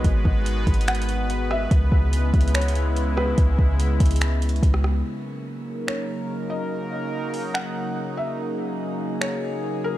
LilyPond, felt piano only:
\new Staff \with { instrumentName = "Felt piano" } { \time 4/4 \key dis \phrygian \tempo 4 = 144 r2 fis''4. e''8 | r2 cis''4. b'8 | r1 | r2 cis''4. dis''8 |
r2 fis''4. e''8 | r2 cis''4. ais'8 | }